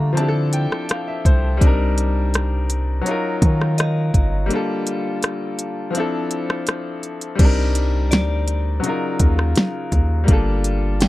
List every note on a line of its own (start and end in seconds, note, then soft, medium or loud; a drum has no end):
0.00 0.67 D3 loud
0.00 0.12 G3 medium
0.00 0.16 A3 medium
0.00 0.13 A#3 medium
0.00 0.14 D4 medium
0.00 0.15 F4 medium
0.00 0.49 E5 soft
0.00 0.14 A#5 medium
0.13 1.56 F3 medium
0.13 1.57 C4 medium
0.17 1.59 D4 medium
0.17 1.60 E4 medium
0.17 0.51 A5 medium
0.17 closed hi-hat medium
0.22 0.26 G4 medium
0.28 1.64 A4 medium
0.53 0.87 G5 medium
0.53 closed hi-hat medium
0.72 cross-stick medium
0.89 1.06 F5 medium
0.89 cross-stick loud
0.89 closed hi-hat medium
1.08 1.24 E5 medium
1.25 1.60 C2 loud
1.25 1.59 C5 medium
1.25 kick medium
1.25 closed hi-hat medium
1.57 3.01 G3 medium
1.57 3.02 C4 medium
1.61 3.02 C2 loud
1.61 3.03 D4 medium
1.61 3.04 D#4 medium
1.61 kick loud
1.61 closed hi-hat medium
1.67 3.06 A#4 medium
1.98 closed hi-hat medium
2.34 cross-stick loud
2.34 closed hi-hat medium
2.70 closed hi-hat medium
3.01 4.45 F#3 medium
3.01 4.46 C#4 medium
3.06 4.48 D#4 medium
3.06 4.49 F4 medium
3.06 closed hi-hat medium
3.11 4.50 A#4 medium
3.42 4.11 D#3 loud
3.42 kick medium
3.42 closed hi-hat medium
3.61 cross-stick medium
3.78 4.83 D#5 medium
3.78 cross-stick loud
3.78 closed hi-hat medium
4.14 4.50 G1 loud
4.14 kick medium
4.14 closed hi-hat medium
4.46 5.90 G3 medium
4.46 5.91 A#3 medium
4.51 5.92 D3 medium
4.51 5.93 F4 medium
4.51 closed hi-hat medium
4.55 5.95 A4 medium
4.87 closed hi-hat medium
5.23 cross-stick loud
5.23 closed hi-hat medium
5.59 closed hi-hat medium
5.91 7.34 F3 medium
5.91 7.35 C4 medium
5.95 7.37 D4 medium
5.95 7.38 E4 medium
5.95 closed hi-hat medium
6.00 7.39 A4 medium
6.31 closed hi-hat medium
6.50 cross-stick loud
6.67 cross-stick loud
6.67 closed hi-hat medium
7.03 closed hi-hat soft
7.21 closed hi-hat medium
7.35 8.13 C2 loud
7.35 8.79 G3 medium
7.35 8.80 C4 medium
7.35 kick loud
7.35 closed hi-hat medium
7.35 crash loud
7.40 8.81 D4 medium
7.40 8.83 D#4 medium
7.45 8.84 A#4 medium
7.75 closed hi-hat medium
8.11 8.80 D2 loud
8.11 9.16 D5 medium
8.11 snare loud
8.11 closed hi-hat medium
8.48 closed hi-hat medium
8.80 10.25 C#3 medium
8.80 10.24 F#3 medium
8.80 closed hi-hat medium
8.84 10.26 D#4 medium
8.84 10.27 F4 medium
8.89 10.28 A#4 medium
9.20 9.55 D#2 loud
9.20 kick medium
9.20 closed hi-hat medium
9.39 cross-stick medium
9.56 snare loud
9.56 closed hi-hat medium
9.92 10.27 D#2 loud
9.92 kick medium
9.92 closed hi-hat medium
10.24 11.08 G3 medium
10.24 11.08 A#3 medium
10.28 11.08 G1 loud
10.28 11.08 D4 medium
10.28 11.08 F4 medium
10.28 kick loud
10.28 closed hi-hat medium
10.33 11.08 A4 medium
10.64 closed hi-hat medium
11.01 11.08 G5 medium
11.01 snare loud
11.01 closed hi-hat medium